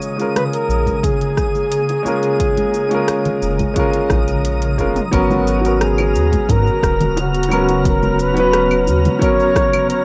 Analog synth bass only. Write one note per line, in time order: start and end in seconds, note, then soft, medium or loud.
0.69 0.90 A#1 medium
3.42 3.64 F1 medium
4.10 4.80 A#1 medium
4.79 5.00 F1 medium
5.13 6.17 G#1 loud
6.15 6.36 D#2 medium
6.49 6.70 G#2 medium
6.83 8.89 D#1 loud
8.87 9.09 D#2 medium